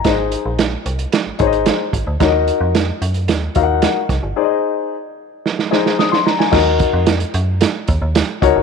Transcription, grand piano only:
\new Staff \with { instrumentName = "Grand piano" } { \time 4/4 \key ees \dorian \tempo 4 = 111 << { bes''16 r2. r8. | r1 | r2. ees'''16 c'''16 bes''16 aes''16~ | aes''16 r2. r8. | } \\ { <ees' aes' c'' ees''>4 r4. <ees' aes' c'' des'' ees''>4 r8 | <ees' ges' bes' des'' ees''>4 r4. <ees' ges' bes' f'' ges''>4 r8 | <ees' aes' c'' d'' ees''>4 r4. <ees' aes' c'' ees''>4 r8 | <ees' ges' bes' ees''>4 r2 r8 <ees' ges' bes' des''>16 r16 | } >> }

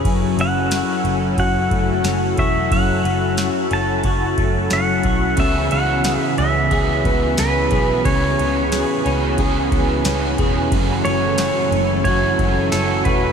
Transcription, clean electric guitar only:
\new Staff \with { instrumentName = "Clean electric guitar" } { \time 4/4 \key fis \minor \tempo 4 = 90 fis,8 cis'8 fis'8 cis'8 fis'8 a8 cis'8 fis'8 | fis,8 cis'8 fis'8 cis'8 fis'8 a8 cis'8 fis'8 | cis8 cis'8 gis'8 cis'8 gis'8 b8 cis'8 gis'8 | cis8 cis'8 gis'8 cis'8 gis'8 b8 cis'8 gis'8 |
fis,8 cis'8 fis'8 cis'8 fis'8 a8 cis'8 fis'8 | }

